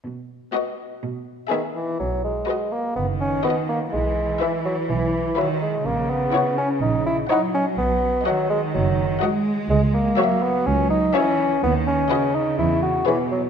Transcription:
<<
  \new Staff \with { instrumentName = "Violin section" } { \time 4/4 \key b \major \tempo 4 = 125 r4 dis''4 r4 e''4 | r4 dis''4 r4 dis''4 | r4 e''4 r4 e''4 | r4 fis''4 r4 fis''4 |
r4 fis''4 r4 fis''4 | r4 e''4 r4 e''4 | r4 dis''4 r4 cis''4 | }
  \new Staff \with { instrumentName = "Violin section" } { \time 4/4 \key b \major r4 fis'4 r4 gis'4 | r4 b'4 r4 b'4 | r4 b'4 r4 b'4 | r4 cis''4 r4 cis''4 |
r4 dis''4 r4 dis''4 | r4 cis''4 r4 cis''4 | r4 b'4 r4 b'4 | }
  \new Staff \with { instrumentName = "Viola section" } { \time 4/4 \key b \major r4 b4 r4 b4 | r4 fis'4 r4 fis'4 | r4 e'4 r4 e'4 | r4 e'4 r4 e'4 |
r4 fis'4 r4 fis'4 | r4 fis'4 r4 fis'4 | r4 fis'4 r4 gis'4 | }
  \new Staff \with { instrumentName = "Bassoon" } { \time 4/4 \key b \major r2. dis8 e8 | fis8 gis4 ais8 b8 cis'8 b8 ais8 | gis4 e8 fis8 e4 fis8 gis8 | ais8 b4 cis'8 dis'8 e'8 dis'8 cis'8 |
b4 fis8 gis8 fis4 r4 | gis8 ais4 b8 cis'8 dis'8 cis'4 | b8 cis'4 dis'8 e'8 fis'8 e8 fis8 | }
  \new Staff \with { instrumentName = "Cello section" } { \clef bass \time 4/4 \key b \major b,4 r4 b,4 r4 | r2 dis2 | e2. dis4 | cis2. fis4~ |
fis4 dis2 gis4~ | gis4 fis2 e4 | dis4 cis2 b,4 | }
  \new Staff \with { instrumentName = "Double bass section" } { \clef bass \time 4/4 \key b \major r1 | b,,4 r4 fis,,4 r4 | b,,4 r4 b,,4 r4 | ais,,4 r4 ais,,4 r4 |
b,,4 r4 fis,,4 r4 | cis,4 r4 cis,4 r4 | dis,4 r4 e,4 r4 | }
>>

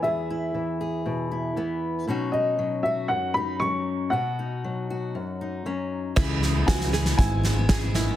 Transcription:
<<
  \new Staff \with { instrumentName = "Upright piano" } { \time 4/4 \key b \mixolydian \tempo 4 = 117 e''2.~ e''8 r8 | r8 dis''4 e''8 fis''8 b''8 cis'''4 | fis''2. r4 | r4 gis''4 gis''2 | }
  \new Staff \with { instrumentName = "Five-string banjo" } { \time 4/4 \key b \mixolydian r1 | r1 | r1 | e'4 fis'8 gis'8 e'4 gis'8 e'8 | }
  \new Staff \with { instrumentName = "Steel-string acoustic guitar" } { \time 4/4 \key b \mixolydian << { gis'8 e'4 gis'4 e'8 b4 | <fis cis' dis' fis'>8 dis'4 fis'4 dis'8 cis'4 | fis'8 dis'4 fis'4 dis'8 cis'4 | gis'8 e'2 gis'4. | } \\ { <e, e>4 e4 b,4 e4 | b,4 fis4 fis,4 fis4 | b,4 fis4 fis,4 fis4 | cis4 e4 gis,4 cis8 dis8 | } >> }
  \new Staff \with { instrumentName = "Steel-string acoustic guitar" } { \time 4/4 \key b \mixolydian r1 | r1 | r1 | <cis e gis b e'>8. <gis b e'>16 <cis e gis b e'>8 <e gis b e'>16 <gis b e'>8. <e gis b e'>16 <gis b e'>16 <cis e gis b e'>16 <gis b e'>16 <e gis b e'>16 <gis b e'>16 | }
  \new Staff \with { instrumentName = "Picked electric bass" } { \clef bass \time 4/4 \key b \mixolydian r1 | r1 | r1 | cis,4 cis,4 gis,,2 | }
  \new DrumStaff \with { instrumentName = "Drums" } \drummode { \time 4/4 r4 r4 r4 r4 | r4 r4 r4 r4 | r4 r4 r4 r4 | <cymc bd sn>8 sn8 <bd sn>16 sn16 sn16 sn16 <bd sn>8 sn8 <bd sn>8 sn8 | }
>>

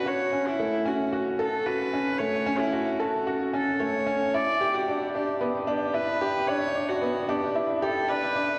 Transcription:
<<
  \new Staff \with { instrumentName = "Viola" } { \time 4/4 \key fis \phrygian \tempo 4 = 112 cis''8. e'8. fis'8 r8 a'8 b'4 | cis''8. e'8. fis'8 r8 a'8 cis''4 | d''8. fis'8. g'8 r8 g'8 b'4 | cis''8. fis'8. g'8 r8 a'8 b'4 | }
  \new Staff \with { instrumentName = "Upright piano" } { \time 4/4 \key fis \phrygian fis'8 cis'8 a8 cis'8 fis'8 a'8 fis'8 cis'8 | a8 cis'8 fis'8 a'8 fis'8 cis'8 a8 cis'8 | e'8 g'8 d'8 d'8 b8 d'8 e'8 g'8 | d'8 d'8 b8 d'8 e'8 g'8 d'8 d'8 | }
>>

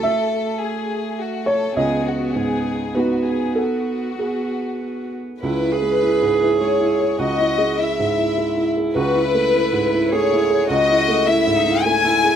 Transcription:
<<
  \new Staff \with { instrumentName = "Violin section" } { \time 3/4 \key cis \minor \tempo 4 = 102 a'4 gis'4 fis'8 a'8 | gis'8 fis'8 gis'4 fis'8 gis'8 | fis'2~ fis'8 r8 | b'2 cis''4 |
dis''4 e''4. r8 | b'2 cis''4 | dis''4 e''4 gis''4 | }
  \new Staff \with { instrumentName = "Cello" } { \time 3/4 \key cis \minor a2. | b2 b4~ | b4 b4. r8 | e'8 gis'2~ gis'8 |
fis'4 e'2 | fis'8 e'4. gis'4 | fis'4 e'8 dis'8 e'4 | }
  \new Staff \with { instrumentName = "Upright piano" } { \time 3/4 \key cis \minor << { e''2~ e''8 cis''8 | dis''2 b'4 | a'4 gis'4. r8 | r2. |
r2. | r2. | r2. | } \\ { <a e' fis'>2. | cis,4 gis,4 <b dis' fis'>4~ | <b dis' fis'>2. | \tuplet 3/2 { cis,8 e'8 gis8 e'8 gis,8 e'8 gis8 e'8 gis'8 } |
\tuplet 3/2 { cis,8 e'8 gis8 e'8 gis,8 e'8 gis8 e'8 gis'8 } | \tuplet 3/2 { cis,8 e'8 a8 e'8 gis,8 e'8 a8 e'8 gis'8 } | \tuplet 3/2 { cis,8 e'8 a8 e'8 gis,8 e'8 a8 e'8 gis'8 } | } >> }
>>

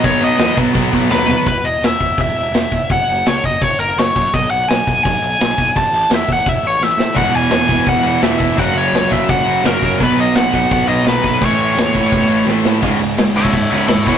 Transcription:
<<
  \new Staff \with { instrumentName = "Lead electric guitar" } { \time 4/4 \key cis \minor \tempo 4 = 169 cis''8 dis''4 r4. b'4 | b'8 dis''8 e''4 e''2 | fis''4 cis''8 dis''8 cis''8 ais'8 cis''4 | dis''8 fis''8 gis''4 gis''2 |
a''4 e''8 fis''8 e''8 cis''8 e''4 | fis''8 gis''4. fis''4 e''8 e''8 | fis''8 cis''4 e''8 fis''4 ais'4 | b'8 dis''8 fis''4 fis''8 dis''8 b'4 |
cis''2. r4 | r4. <cis'' e''>8 <cis'' e''>8 <cis'' e''>8 <e' cis''>8 <e' cis''>8 | }
  \new Staff \with { instrumentName = "Distorted electric guitar" } { \clef bass \time 4/4 \key cis \minor <b, fis b>8 <b, fis b>8 <b, fis b>8 <b, fis b>8 <b, fis b>8 <b, fis b>8 <b, fis b>8 <b, fis b>8 | r1 | r1 | r1 |
r1 | <e, b, e>2~ <e, b, e>8 <e, b, e>8 <e, b, e>4 | <fis, cis fis>2~ <fis, cis fis>8 <fis, cis fis>8 <fis, cis fis>4 | <b, fis b>2~ <b, fis b>8 <b, fis b>8 <b, fis b>4 |
<a, e a>2~ <a, e a>8 <a, e a>8 <a, e a>4 | <cis, gis, cis>8 <cis, gis,>8 <cis, gis,>8 <cis, gis, cis>8 <cis, gis,>8 <cis, gis, cis>8 <cis, gis,>8 <e, b, e>8 | }
  \new Staff \with { instrumentName = "Overdriven electric guitar" } { \clef bass \time 4/4 \key cis \minor <b, fis b>8 <b, fis b>8 <b, fis b>8 <b, fis b>8 <b, fis b>8 <b, fis b>8 <b, fis b>8 <b, fis b>8 | r1 | r1 | r1 |
r1 | <e, b, e>4. <e, b, e>4. <e, b, e>4 | <fis, cis fis>4. <fis, cis fis>4. <fis, cis fis>4 | <b, fis b>4. <b, fis b>4. <b, fis b>4 |
<a, e a>4. <a, e a>4. <a, e a>4 | <cis, gis, cis>8 <cis, gis,>8 <cis, gis,>8 <cis, gis, cis>8 <cis, gis,>8 <cis, gis, cis>8 <cis, gis,>8 <e, b, e>8 | }
  \new Staff \with { instrumentName = "Distorted electric guitar" } { \clef bass \time 4/4 \key cis \minor <b, fis b>4. <b, fis b>2 r8 | r1 | r1 | r1 |
r1 | <e, b, e>1 | <fis, cis fis>1 | <b, fis b>1 |
<a, e a>1 | <cis, gis, cis>4. <cis, gis, cis>4. <cis, gis, cis>8 <e, b, e>8 | }
  \new Staff \with { instrumentName = "Picked electric bass" } { \clef bass \time 4/4 \key cis \minor b,,8 b,,8 e,8 b,,8 b,,8 b,,8 dis,,4 | e,,8 e,,8 e,,8 e,,8 e,,8 e,,8 e,,8 eis,,8 | fis,,8 fis,,8 cis,8 fis,,8 cis,,8 fis,,8 fis,,8 fis,8 | b,,8 b,,8 b,,8 b,,8 b,,8 b,,8 b,,8 b,,8 |
a,,8 a,,8 e,8 a,,8 e,,8 a,,8 a,,8 a,8 | e,,8 e,,8 e,,8 e,,8 e,,8 e,,8 e,,8 e,,8 | fis,,8 fis,,8 cis,8 fis,,8 cis,,8 fis,,8 fis,,8 fis,8 | b,,8 b,,8 b,,8 b,,8 b,,8 b,,8 b,,8 b,,8 |
a,,8 a,,8 e,8 a,,8 e,,8 a,,8 a,,8 a,8 | cis,,8 cis,,8 cis,,8 gis,,8 cis,,8 cis,,8 dis,,8 e,,8 | }
  \new DrumStaff \with { instrumentName = "Drums" } \drummode { \time 4/4 <cymc bd>4 <cymc sn>8 bd8 <cymc bd>8 bd8 sn8 tomfh8 | <cymc bd>8 cymc8 <cymc sn>8 <cymc bd>8 <cymc bd>8 cymc8 <cymc sn>8 <cymc bd>8 | <cymc bd>8 cymc8 <cymc sn>8 <cymc bd>8 <cymc bd>8 cymc8 <cymc sn>8 <cymc bd>8 | <cymc bd>8 cymc8 <cymc sn>8 <cymc bd>8 <cymc bd>8 cymc8 <cymc sn>8 <cymc bd>8 |
<cymc bd>8 cymc8 <cymc sn>8 <cymc bd>8 <cymc bd>8 cymc8 sn8 sn8 | <cymc bd>8 cymc8 <cymc sn>8 <cymc bd>8 <cymc bd>8 cymc8 <cymc sn>8 <cymc bd>8 | <cymc bd>8 cymc8 <cymc sn>8 <cymc bd>8 <cymc bd>8 cymc8 <cymc sn>8 <cymc bd>8 | <cymc bd>8 cymc8 <cymc sn>8 <cymc bd>8 <cymc bd>8 cymc8 <cymc sn>8 <cymc bd>8 |
<cymc bd>8 cymc8 <cymc sn>8 <cymc bd>8 <cymc bd>8 cymc8 sn8 sn8 | <cymc bd>8 cymc8 <cymc sn>8 cymc16 bd16 <cymc bd>8 cymc8 <cymc sn>8 <cymc bd>8 | }
>>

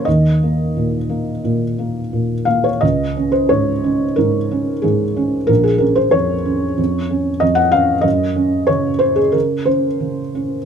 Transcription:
<<
  \new Staff \with { instrumentName = "Felt piano" } { \time 4/4 \key des \major \tempo 4 = 91 ees''2.~ ees''8 f''16 des''16 | ees''8. c''16 des''4 bes'4 aes'4 | bes'16 aes'16 bes'16 c''16 des''2 ees''16 ges''16 f''8 | ees''4 des''8 c''16 aes'16 bes'8 c''4. | }
  \new Staff \with { instrumentName = "Felt piano" } { \clef bass \time 4/4 \key des \major ees,8 bes8 bes,8 bes8 bes,8 bes8 bes,8 bes8 | des,8 des'8 aes,8 des'8 aes,8 des'8 aes,8 des'8 | bes,,8 des'8 f,8 des'8 f,8 des'8 f,8 des'8 | ges,8 des'8 des8 des'8 des8 des'8 des8 des'8 | }
>>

